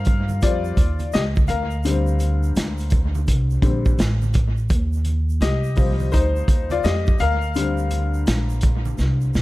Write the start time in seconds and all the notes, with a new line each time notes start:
Already playing: G2 F3 G3 C4 A#4 F5
0.05 kick, closed hi-hat, high conga, low conga, shaker
0.29 high conga, shaker
0.41 F2 F3 G3 C4 F4 D5, kick, closed hi-hat, shaker
0.64 shaker
0.77 D#2, kick, closed hi-hat, shaker
0.99 closed hi-hat, high conga, shaker
1.13 C#2 G4 D#5, snare, closed hi-hat, shaker
1.36 kick, high conga, shaker
1.47 D2 A#4 F5, closed hi-hat, low conga, shaker
1.71 shaker
1.84 D3 G3 C4, closed hi-hat, shaker
2.07 shaker
2.19 closed hi-hat, high conga, shaker
2.43 shaker
2.56 D2, snare, closed hi-hat, shaker
2.78 closed hi-hat, shaker
2.90 kick, closed hi-hat, high conga, low conga, shaker
3.15 high conga, shaker
3.27 C2, kick, closed hi-hat, shaker
3.50 shaker
3.62 A#1 D3 G3 C4, kick, closed hi-hat, shaker
3.85 kick, high conga, shaker
3.99 A1, snare, closed hi-hat, shaker
4.22 high conga, shaker
4.34 kick, closed hi-hat, low conga, shaker
4.57 shaker
4.69 D#2, kick, closed hi-hat, shaker
4.93 shaker
5.05 closed hi-hat, high conga, shaker
5.29 shaker
5.41 C2 G4 D#5, snare, closed hi-hat, shaker
5.64 shaker
5.76 F3 G3 C4, kick, open hi-hat, high conga, low conga, shaker
6.00 high conga, shaker
6.12 D2 D#4 C5, kick, closed hi-hat, shaker
6.36 shaker
6.48 D#2, kick, closed hi-hat, shaker
6.70 F4 D5, closed hi-hat, high conga, shaker
6.84 F2 G4 D#5, snare, closed hi-hat, shaker
7.07 kick, high conga, shaker
7.19 D2 A#4 F5, closed hi-hat, low conga, shaker
7.42 shaker
7.55 D3 G3 C4, closed hi-hat, shaker
7.78 shaker
7.91 closed hi-hat, high conga, shaker
8.14 shaker
8.27 A#1, snare, closed hi-hat, shaker
8.50 shaker
8.61 kick, closed hi-hat, high conga, low conga, shaker
8.85 high conga, shaker
8.98 C2, snare, shaker
9.21 shaker
9.34 A#1, snare, shaker